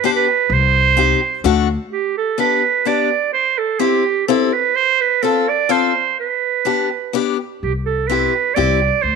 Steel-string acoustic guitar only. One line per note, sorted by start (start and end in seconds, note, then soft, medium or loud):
0.04 0.25 B3 medium
0.04 0.26 D4 medium
0.04 0.26 G4 medium
0.97 1.19 C4 medium
0.97 1.19 D#4 medium
0.97 1.20 G4 medium
1.44 1.67 A3 medium
1.44 1.67 D4 medium
1.44 1.67 F#4 medium
2.38 2.61 B3 medium
2.38 2.61 D4 soft
2.38 2.62 G4 medium
2.85 3.09 B3 medium
2.85 3.09 D4 medium
2.85 3.09 G4 medium
3.79 4.03 C4 medium
3.79 4.03 E4 medium
3.79 4.04 G4 medium
4.28 4.51 C4 medium
4.28 4.51 E4 medium
4.28 4.52 G4 medium
5.23 5.45 C4 medium
5.23 5.46 F4 medium
5.23 5.46 A4 medium
5.69 5.92 C4 medium
5.69 5.92 F4 medium
5.69 5.92 A4 medium
6.65 6.88 B3 medium
6.65 6.88 D4 medium
6.65 6.88 G4 medium
7.13 7.36 B3 medium
7.13 7.36 D4 medium
7.13 7.37 G4 medium
8.10 8.32 C4 medium
8.10 8.32 E4 soft
8.10 8.33 G4 medium
8.56 8.79 C4 medium
8.56 8.79 E4 medium
8.56 8.79 G4 medium